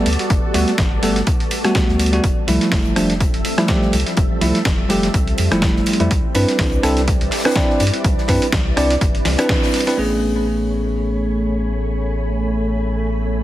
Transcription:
Already playing: string machine G3 B3 F#4 A4 D5
0.06 sub bass D2, closed hi-hat, open hi-hat
0.13 closed hi-hat
0.19 snare, closed hi-hat
0.30 sub bass G1, kick, closed hi-hat
0.54 sub bass D2, tine electric piano G3 A3 B3 F#4, closed hi-hat, open hi-hat
0.67 snare, closed hi-hat
0.78 sub bass G1, kick, snare, closed hi-hat
1.02 sub bass G1, tine electric piano G3 A3 B3 A4, closed hi-hat, open hi-hat
1.16 snare, closed hi-hat
1.27 kick, closed hi-hat
1.40 closed hi-hat
1.51 closed hi-hat, open hi-hat
1.64 tine electric piano G3 A3 B3 F#4, cross-stick, snare, closed hi-hat
1.75 kick, snare, closed hi-hat
1.89 sub bass D2, snare
1.99 closed hi-hat, open hi-hat
2.06 closed hi-hat
2.13 tine electric piano G3 A3 B3 F#4, closed hi-hat
2.23 sub bass F1, string machine F3 G3 C4 A4 E5, kick, closed hi-hat
2.47 sub bass C2, tine electric piano F3 G3 A3 E4, closed hi-hat, open hi-hat
2.61 snare, closed hi-hat
2.72 sub bass F1, kick, snare, closed hi-hat, open hi-hat
2.86 closed hi-hat
2.96 sub bass F1, tine electric piano F3 G3 A3 D4, cross-stick, closed hi-hat, open hi-hat
3.10 snare, closed hi-hat
3.20 kick, closed hi-hat
3.34 sub bass F1, closed hi-hat
3.45 closed hi-hat, open hi-hat
3.57 tine electric piano F3 G3 A3 E4, cross-stick, snare, closed hi-hat
3.68 tine electric piano F3 G3 A3 G4, kick, snare, closed hi-hat
3.82 snare
3.93 sub bass C2, closed hi-hat, open hi-hat
4.00 closed hi-hat
4.06 snare, closed hi-hat
4.17 sub bass F1, kick, closed hi-hat
4.41 sub bass C2, tine electric piano F3 G3 A3 E4, closed hi-hat, open hi-hat
4.55 snare, closed hi-hat
4.65 sub bass F1, kick, snare, closed hi-hat
4.89 sub bass F1, tine electric piano F3 G3 A3 G4, closed hi-hat, open hi-hat
5.03 snare, closed hi-hat
5.14 sub bass C2, kick, closed hi-hat
5.27 closed hi-hat
5.38 sub bass F2, closed hi-hat, open hi-hat
5.51 sub bass F1, tine electric piano F3 G3 A3 E4, cross-stick, snare, closed hi-hat
5.62 kick, snare, closed hi-hat
5.76 snare
5.86 closed hi-hat, open hi-hat
5.93 closed hi-hat
5.99 sub bass F2, tine electric piano F3 G3 A3 E4, closed hi-hat
6.11 sub bass C2, string machine E4 B4 D5, kick, closed hi-hat
6.35 sub bass G2, tine electric piano C4 D4 E4 B4, closed hi-hat, open hi-hat
6.48 snare, closed hi-hat
6.59 sub bass C2, kick, snare, closed hi-hat, open hi-hat
6.72 closed hi-hat
6.83 sub bass C2, tine electric piano C4 D4 E4 A4, cross-stick, closed hi-hat, open hi-hat
6.97 snare, closed hi-hat
7.08 kick, closed hi-hat
7.21 sub bass C2, closed hi-hat
7.31 snare, open hi-hat
7.38 snare, open hi-hat
7.45 tine electric piano C4 D4 E4 B4, cross-stick, snare, closed hi-hat, open hi-hat
7.50 snare, open hi-hat
7.56 tine electric piano C4 D4 E4 D5, kick, snare, closed hi-hat
7.70 snare
7.80 sub bass G2, closed hi-hat, open hi-hat
7.87 closed hi-hat
7.94 closed hi-hat
8.04 sub bass C2, kick, closed hi-hat
8.18 snare
8.28 sub bass G2, tine electric piano C4 D4 E4 B4, kick, snare, open hi-hat
8.42 closed hi-hat
8.52 sub bass C2, kick, snare, closed hi-hat
8.77 sub bass C2, tine electric piano C4 D4 E4 D5, cross-stick, closed hi-hat, open hi-hat
8.90 snare, closed hi-hat
9.01 sub bass G1, kick, closed hi-hat
9.15 closed hi-hat
9.25 sub bass C2, snare, closed hi-hat, open hi-hat
9.38 tine electric piano C4 D4 E4 B4, cross-stick, closed hi-hat
9.49 kick, snare, open hi-hat
9.63 snare, open hi-hat
9.74 snare, open hi-hat
9.80 closed hi-hat
9.87 tine electric piano C4 D4 E4 B4, snare, closed hi-hat, open hi-hat
9.97 sub bass A1, tine electric piano A3 B3 C#4 G#4, string machine A3 C#5 G#5 B5

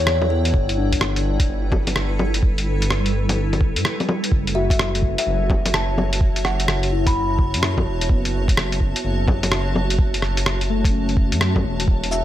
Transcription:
Already playing: detuned saw bass E2, ambient pad E4 D5 F#5 G5 A5
0.07 kalimba C#5, cross-stick
0.22 low bongo
0.30 kalimba A4
0.45 closed hi-hat
0.54 detuned saw bass G1, ambient pad G3, kick
0.69 ambient pad A4, closed hi-hat
0.77 synth keys D4, ambient pad B4
0.92 kick, closed hi-hat
1.01 cross-stick
1.16 closed hi-hat
1.40 kick, closed hi-hat
1.49 detuned saw bass G1
1.72 kick, low bongo
1.87 closed hi-hat, low bongo
1.96 detuned saw bass G1, cross-stick
2.19 low bongo
2.34 closed hi-hat
2.43 kick
2.58 closed hi-hat
2.82 closed hi-hat
2.90 cross-stick
3.06 closed hi-hat
3.29 closed hi-hat, low bongo
3.53 closed hi-hat, low bongo
3.61 kick
3.76 detuned saw bass G2, closed hi-hat
3.85 cross-stick
4.00 closed hi-hat, low bongo
4.09 low bongo
4.24 closed hi-hat
4.32 detuned saw bass F#1, ambient pad F#4, kick
4.47 ambient pad E5, closed hi-hat
4.54 synth keys F#4, ambient pad C#5 A5, kalimba E5
4.70 kalimba E5, kick, closed hi-hat
4.79 cross-stick
4.95 closed hi-hat
5.03 kick
5.18 kalimba E5, closed hi-hat
5.27 detuned saw bass F#1
5.50 kick, low bongo
5.66 closed hi-hat, low bongo
5.74 detuned saw bass F#1, kalimba A5, cross-stick
5.98 low bongo
6.13 closed hi-hat
6.21 kick
6.36 closed hi-hat
6.45 kalimba F#5, cross-stick
6.60 closed hi-hat
6.68 cross-stick
6.83 closed hi-hat
6.92 synth keys E4
7.07 kalimba B5, kick, closed hi-hat
7.39 kick
7.54 detuned saw bass F#2, closed hi-hat
7.63 cross-stick
7.77 kick, low bongo
7.87 detuned saw bass E1
8.01 closed hi-hat
8.09 detuned saw bass F#1, synth keys B3, kick
8.25 closed hi-hat
8.48 kick, closed hi-hat
8.57 cross-stick
8.72 closed hi-hat
8.80 kick
8.96 closed hi-hat
9.04 detuned saw bass F#1
9.28 kick, low bongo
9.43 closed hi-hat, low bongo
9.51 detuned saw bass F#1, cross-stick
9.75 low bongo
9.90 closed hi-hat
9.99 kick
10.14 closed hi-hat
10.22 cross-stick
10.37 closed hi-hat
10.46 cross-stick
10.61 closed hi-hat
10.70 synth keys A3
10.85 kick, closed hi-hat
10.90 synth keys C#4
11.09 closed hi-hat
11.17 kick
11.32 detuned saw bass F#2, closed hi-hat
11.41 cross-stick
11.56 kick, low bongo
11.64 detuned saw bass E1
11.80 closed hi-hat
11.87 detuned saw bass E1, ambient pad E4, kick
12.04 closed hi-hat
12.11 kalimba E5, cabasa

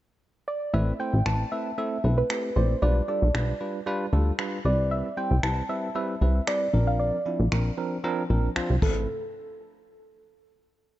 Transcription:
0.48 synth pluck D5
0.73 analog synth bass A1, tine electric piano A3 C4 E4 B4, synth pluck E5
1.00 tine electric piano A3 C4 E4 C5, synth pluck G5
1.14 analog synth bass A1
1.26 analog synth bass A1, tine electric piano A3 C4 E4 B4, synth pluck A5, finger snap
1.52 tine electric piano A3 C4 E4 B4, synth pluck E5
1.78 tine electric piano A3 C4 E4 A4, synth pluck E5
2.04 analog synth bass B1, tine electric piano A3 C4 E4 B4
2.18 synth pluck B4
2.30 tine electric piano A3 C4 E4 G4, finger snap
2.56 analog synth bass A#1, tine electric piano A3 C4 E4 D5, synth pluck C5
2.82 analog synth bass B1, tine electric piano G3 D4 F4 B4, synth pluck D5
3.08 tine electric piano G3 D4 F4 A4, synth pluck D5
3.22 analog synth bass B1
3.34 analog synth bass B1, tine electric piano G3 D4 F4 B4, finger snap
3.60 tine electric piano G3 D4 F4 B4
3.86 tine electric piano G3 D4 F4 B4
4.13 analog synth bass D2, tine electric piano G3 D4 F4 A4
4.39 tine electric piano G3 D4 F4 B4, finger snap
4.65 analog synth bass C2, tine electric piano G3 C4 E4 B4, synth pluck D5
4.91 synth pluck E5
5.17 tine electric piano G3 C4 E4 C5, synth pluck G5
5.31 analog synth bass C2
5.43 analog synth bass C2, tine electric piano G3 C4 E4 B4, synth pluck A5, finger snap
5.69 tine electric piano G3 C4 E4 B4, synth pluck E5
5.95 tine electric piano G3 C4 E4 B4, synth pluck E5
6.21 analog synth bass C2, tine electric piano G3 C4 E4 B4
6.47 tine electric piano G3 C4 E4 B4, synth pluck D5, finger snap
6.73 analog synth bass A#1, tine electric piano F3 C4 D4 A#4
6.87 synth pluck F5
6.99 synth pluck D5
7.25 tine electric piano F3 C4 D4 E4
7.40 analog synth bass A#1
7.52 analog synth bass A#1, tine electric piano F3 C4 D4 A#4, finger snap
7.78 tine electric piano F3 C4 D4 A#4
8.04 tine electric piano F3 C4 D4 A#4
8.30 analog synth bass A#1, tine electric piano F3 C4 D4 A#4
8.56 analog synth bass C2, tine electric piano F3 C4 D4 F4, finger snap
8.70 analog synth bass C2
8.82 analog synth bass A1, tine electric piano A3 C4 E4 B4, synth pluck A4, kick, crash

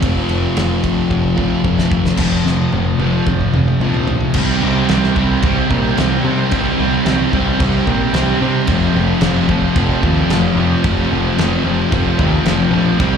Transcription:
Already playing: distorted electric guitar C4
0.00 picked electric bass F1, distorted electric guitar F2 C3 F3 A3 C4 F4, kick, ride
0.29 picked electric bass F1, ride
0.56 picked electric bass F1, snare, ride
0.84 kick, ride
1.10 picked electric bass F1, kick
1.36 distorted electric guitar F2 C3 F3 A3 C4 F4, kick
1.62 picked electric bass F1, distorted electric guitar F2 C3 F3 A3 C4 F4, kick
1.78 snare
1.91 picked electric bass F1, kick
2.05 snare
2.17 picked electric bass F1, distorted electric guitar F2 C3 F3, kick, snare, crash
2.44 picked electric bass F1, distorted electric guitar F2 C3, snare
2.72 picked electric bass F1, distorted electric guitar F2 C3, high tom
2.99 picked electric bass F1, distorted electric guitar F2 C3 F3, high tom
3.26 picked electric bass F1, distorted electric guitar F2 C3, kick, mid tom
3.41 mid tom
3.52 picked electric bass F1, distorted electric guitar F2 C3, mid tom
3.68 mid tom
3.80 picked electric bass A#1, distorted electric guitar F2 C3 F3, mid tom
3.94 floor tom
4.08 distorted electric guitar F2 C3, floor tom
4.21 floor tom
4.34 picked electric bass C2, distorted electric guitar C3 G3 C4 D#4, kick, crash
4.61 picked electric bass C2, distorted electric guitar C3 G3 C4 D#4
4.88 picked electric bass C2, distorted electric guitar C3 G3 C4 D#4, snare, crash
5.03 snare
5.14 picked electric bass C2, distorted electric guitar C3 G3 C4 D#4, kick
5.42 picked electric bass C2, distorted electric guitar C3 G3 C4 D#4, kick, crash
5.70 picked electric bass A#2, distorted electric guitar C3 G3 C4 D#4, kick
5.97 picked electric bass C2, distorted electric guitar C3 G3 C4 D#4, snare, crash
6.24 distorted electric guitar C3 G3 C4 D#4, picked electric bass C3
6.50 picked electric bass C2, distorted electric guitar C3 G3 C4 D#4, kick, crash
6.78 picked electric bass C2, distorted electric guitar C3 G3 C4 D#4
7.05 picked electric bass C2, distorted electric guitar C3 G3 C4 D#4, snare, crash
7.32 picked electric bass C2, distorted electric guitar C3 G3 C4 D#4, kick
7.60 picked electric bass C2, distorted electric guitar C3 G3 C4 D#4, kick, crash
7.87 picked electric bass A#2, distorted electric guitar C3 G3 C4 D#4, kick
8.14 picked electric bass C2, distorted electric guitar C3 G3 C4 D#4, snare, crash
8.41 distorted electric guitar C3 G3 C4 D#4, picked electric bass C3
8.67 picked electric bass F1, distorted electric guitar F2 C3 F3 A3 C4, kick, crash
8.94 picked electric bass F1, distorted electric guitar F2 C3 F3 A3 C4
9.21 picked electric bass F1, distorted electric guitar F2 C3 F3 A3 C4, snare, crash
9.48 picked electric bass F1, distorted electric guitar F2 C3 F3 A3 C4, kick
9.75 picked electric bass F1, distorted electric guitar F2 C3 F3 A3 C4, kick, crash
10.02 picked electric bass D#2, distorted electric guitar F2 C3 F3 A3 C4, kick
10.29 picked electric bass F1, distorted electric guitar F2 C3 F3 A3 C4, snare, crash
10.56 picked electric bass F2, distorted electric guitar F2 C3 F3 A3
10.60 distorted electric guitar C4
10.83 picked electric bass F1, distorted electric guitar F2 C3 F3 A3 C4, kick, crash
11.11 picked electric bass F1, distorted electric guitar F2 C3 F3 A3 C4
11.37 picked electric bass F1, distorted electric guitar F2 C3 F3 A3 C4, snare, crash
11.64 picked electric bass F1, distorted electric guitar F2 C3 F3 A3 C4
11.91 picked electric bass F1, distorted electric guitar F2 C3 F3 A3 C4, kick, crash
12.18 picked electric bass D#2, distorted electric guitar F2 C3 F3 A3 C4, kick
12.45 picked electric bass F1, distorted electric guitar F2 C3 F3 A3 C4, snare, crash
12.71 picked electric bass A#1, distorted electric guitar F2 C3 F3 A3 C4
12.99 picked electric bass C2, distorted electric guitar C3 G3 C4 D#4, kick, crash

